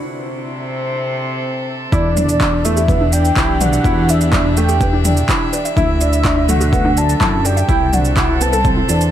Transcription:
Already playing: D4 F#4
0.01 C3
0.15 A4
0.19 C4
0.46 E5
1.92 E2 E3 D4 E4 D5, kick, shaker
2.02 D4
2.17 D4, mid tom, shaker
2.29 shaker
2.37 D4 G4, kick
2.41 D4, clap, shaker
2.53 D4
2.65 A3 E5, shaker
2.77 G4, shaker
2.88 B3 B4, kick, mid tom, shaker
3.01 D4
3.13 D4 G5, shaker
3.25 shaker
3.36 B1 E4, kick, clap, shaker
3.61 D4 B4 F#5, mid tom, shaker
3.73 E5, shaker
3.84 E2 D4 E4, kick, shaker
4.09 D4 E5, shaker
4.21 shaker
4.33 D4, kick, clap, mid tom, shaker
4.45 D4
4.57 A3 G5, shaker
4.69 G4, shaker
4.81 B3 B4, kick, shaker
4.93 D4
5.05 D4, mid tom, shaker
5.17 shaker
5.29 E4, kick, clap, shaker
5.53 D4 B4, shaker
5.65 E5, shaker
5.76 D2 D3 D4 E4 E5, kick, mid tom, shaker
6.01 D4, shaker
6.13 shaker
6.25 D4, kick, clap, shaker
6.37 D4
6.41 F#3
6.49 A3 F#5, mid tom, shaker
6.61 F#4, shaker
6.73 B3 A4, kick, shaker
6.85 D4
6.97 D4 A5, shaker
7.09 shaker
7.21 F#2 E4, kick, clap, mid tom, shaker
7.45 D4 A4 G5, shaker
7.57 E5, shaker
7.69 C2 C3 E4, kick, shaker
7.77 A4
7.87 C4
7.93 D4 F#5, mid tom, shaker
8.05 shaker
8.16 E4, kick, clap, shaker
8.29 E4
8.41 B3 A5, shaker
8.53 A4, shaker
8.65 C4 C5, kick, mid tom, shaker
8.77 E4
8.89 E2 D4 E4, shaker
9.01 shaker

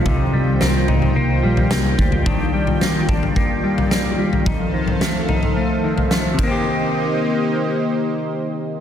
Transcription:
Already playing: F3 A3 F4
0.06 C2 C3 D#3 D#4 C5 G5, kick, floor tom
0.33 C2 G3
0.61 C2 A#3, snare
0.88 C2 D#4, floor tom
1.02 floor tom
1.16 C2 A#3
1.43 A#1 G3
1.57 floor tom
1.71 C2 A#3, snare
1.98 D2 G3, kick
2.12 floor tom
2.26 D#3 D4 D5, kick, floor tom
2.54 G3
2.67 floor tom
2.81 A#3, snare
3.09 D4, kick, floor tom
3.23 floor tom
3.36 A#3, kick
3.64 G3
3.78 floor tom
3.91 A#3, snare
4.19 G3
4.33 floor tom
4.46 F2 D#4 A4 C5 F5, kick, floor tom
4.74 D#3
4.88 floor tom
5.01 A3, snare
5.29 D#4, floor tom
5.43 floor tom
5.57 A3
5.84 D#3
5.98 floor tom
6.11 A3, snare
6.34 C3
6.39 D#3 A#3 D#4 G4 C5 D#5, kick, ride
6.43 A#3
6.47 C4 G4

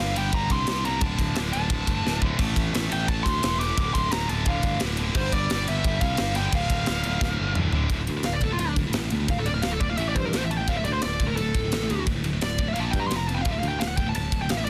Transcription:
Already playing: F5
0.00 G1 G2 D3 G3
0.15 G1 G2 D3 G3 G5, ride
0.32 G1 G2 D3 G3 A#5, kick, ride
0.50 C2 C6, kick, ride
0.67 C2 G2 D3 G3, snare, ride
0.85 G2 D3 G3 A#5, ride
1.01 D1 D2 A2 D3 A5, kick, ride
1.19 D1, kick, ride
1.35 D1 D2 A2 D3, snare, ride
1.53 D1 D2 A2 D3 A5, ride
1.70 D1 D2 A2 D3, kick, ride
1.87 G1, kick, ride
2.04 D1 D2 A2 D3, snare
2.20 D2 A2 D3, kick
2.38 A1 A2 E3 A3, kick, crash
2.56 A1, kick, ride
2.73 A1 A2 E3 A3, snare, ride
2.90 A1 A2 E3 A3 G5, ride
3.07 A1 A2 E3 A3 A5, kick, ride
3.23 D2 C6, kick, ride
3.43 E1 A2 E3 A3, snare, ride
3.60 A2 E3 A3 D6, snare, ride
3.77 D1 D2 A2 D3, kick, ride
3.94 D1 C6, kick, ride
4.12 D1 D2 A2 D3 A#5, snare, ride
4.28 D1 D2 A2 D3 A5, ride
4.45 D1 D2 A2 D3 F5, kick, ride
4.63 G1, kick, ride
4.80 D1 D2 A2 D3, snare, ride
4.97 D2 A2 D3, ride
5.15 G1 G2 D3 G3 C5, kick, crash
5.32 G1 D5, kick, ride
5.50 G1 G2 D3 G3, snare, ride
5.68 G1 G2 D3 G3 E5, ride
5.84 G1 G2 D3 G3, kick, ride
6.01 C2 F5, kick, ride
6.17 G1 G2 D3 G3, snare, ride
6.35 G2 D3 G3 G5, snare, ride
6.52 D1 D2 A2 D3 F5, kick, ride
6.70 D1, kick, ride
6.86 D1 D2 A2 D3, snare, ride
7.04 D1 D2 A2 D3, ride
7.21 D1 D2 A2 D3, kick, snare
7.39 G1
7.55 D1 D2 A2 D3, mid tom
7.72 D2 A2 D3, floor tom
7.90 D1 D2 A2 D3, kick, ride
8.00 D2 A2
8.07 D2 A2, ride
8.17 D2 A2
8.23 D1 D2 A2 F5, snare, ride
8.33 D5
8.41 D2 A2 A4, kick, ride
8.51 D2 A2 F4
8.59 D1 D2 A2 F4, ride
8.68 D4
8.76 D2 A2, kick, ride
8.87 D2 A2
8.93 A1 D2 A2, snare, ride
9.04 D2 A2
9.10 D2 A2, ride
9.20 D2 A2
9.28 D1 D2 A2 F5, kick, ride
9.38 D2 A2 A4
9.46 D2 A2 D5, ride
9.54 D2 A2 F5
9.62 D1 D2 A2 F5, snare, ride
9.71 A4
9.80 D2 A2 D5, kick, ride
9.90 D2 A2 F5
9.97 A1 A2 E3 A3 E5, ride
10.09 D5
10.15 G2 A2 E3 C5, kick, ride
10.25 A2 E3 A#4
10.33 A1 A2 E3 A3 A4, snare, ride
10.38 E3 C5
10.42 A2 E5
10.51 A2 E3 A5, ride
10.58 A2 E3 G5
10.68 D1 D2 A2 D3 F5, kick, ride
10.77 D2 A2 E5
10.85 D2 A2 D5, ride
10.93 D2 A2 C5
11.02 D1 D2 A2 D5, snare, ride
11.20 D2 A2, kick, ride
11.27 D2 A2 A#4
11.36 D1 D2 A2 A4, ride
11.55 D1 D2 A2, kick, ride
11.64 D2 A2
11.72 A1 D2 A2, snare, ride
11.82 D2 A2
11.90 D2 A2, ride
11.99 D2 A2
12.07 D1 D2 A2, kick, ride
12.16 D2 A2
12.24 D2 A2, ride
12.33 D2 A2
12.41 D1 D2 A2 D5, snare, ride
12.58 D2 A2, kick, ride
12.67 D2 A2 E5
12.74 A#1 A#2 F3 A#3 F5, ride
12.80 A5
12.91 G2 A#2 F3 G5, kick, ride
13.00 A#2 F3 A#5
13.07 F2 C3 C6, ride
13.11 F1 F3, snare
13.16 F2 C3 A#5
13.28 F2 C3 A5, ride
13.34 F2 C3 G5
13.42 D1 D2 A2 F5, kick, ride
13.46 D3
13.51 D2 A2 E5
13.59 D2 F5, ride
13.63 D2 A2
13.68 D2 A2 G5
13.80 D1 D2 A2 F5, snare, ride
13.88 F#5
13.97 D2 A2 G5, kick, ride
14.07 D2 A2 A5
14.15 D1 D2 A2 A5, ride
14.32 D1 D2 A2, kick, ride
14.41 D2 A2 G5
14.49 A1 D2 A2 F5, snare, ride
14.58 D2 A2 E5
14.65 D5, ride

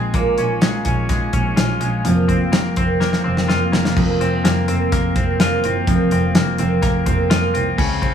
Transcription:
Already playing: A#2 G#3 C4 D#4 G#4 C5
0.14 A#1 A#2 D#3 G#3 C#4 F4, kick, closed hi-hat
0.38 A#1 C#4, closed hi-hat
0.50 G#3 C#4 F4
0.62 G#3, snare, closed hi-hat
0.85 A#1 D#3 G#3 C#4 F4, kick, closed hi-hat
1.09 G#3, kick, snare, closed hi-hat
1.33 A#1 D#3 G#3 C#4 F4, kick, closed hi-hat
1.56 A#1 D#3 G#3 C#4 F4, snare, closed hi-hat
1.69 G#3 C#4 F4
1.80 A#1 G#3, closed hi-hat
2.05 F1 F2 F3 A#3 C4 F4, closed hi-hat
2.28 F1 C4, kick, closed hi-hat
2.41 A#3 C4 F4
2.52 A#3, snare, closed hi-hat
2.76 F1 F3 A#3 C4 F4, kick, closed hi-hat
3.00 A#3, snare
3.13 snare
3.24 F1 F3 A#3 C4 F4
3.37 snare
3.48 F1 F3 A#3 C4 F4, snare
3.60 A#3 C4 F4
3.72 F1 A#3, snare
3.85 snare
3.96 F1 F2 F3 A#3 C4 F4, kick, crash
4.20 F1 C4, closed hi-hat
4.31 A#3 C4 F4
4.44 F1 A#3, snare, closed hi-hat
4.67 F1 F3 A#3 C4 F4, closed hi-hat
4.92 F1 A#3, kick, snare, closed hi-hat
5.15 F1 F3 A#3 C4 F4, kick, closed hi-hat
5.39 F1 F3 A#3 C4 F4, snare, closed hi-hat
5.64 F#1 C4, closed hi-hat
5.74 A#3 C4 F4
5.87 F1 F2 F3 A#3 C4 F4, kick, closed hi-hat
6.11 F1 C4, closed hi-hat
6.22 A#3 C4 F4
6.35 F1 A#3, snare, closed hi-hat
6.58 F1 F3 A#3 C4 F4, closed hi-hat
6.82 F1 A#3, kick, snare, closed hi-hat
7.06 F1 F3 A#3 C4 F4, kick, closed hi-hat
7.30 F1 F3 A#3 C4 F4, snare, closed hi-hat
7.54 C2 C4, closed hi-hat
7.66 A#3 C4 F4
7.78 C#2 C#3 G#3 C4 F4, kick, crash
8.02 C#2 C#3 G#3 C4 F4, kick, ride

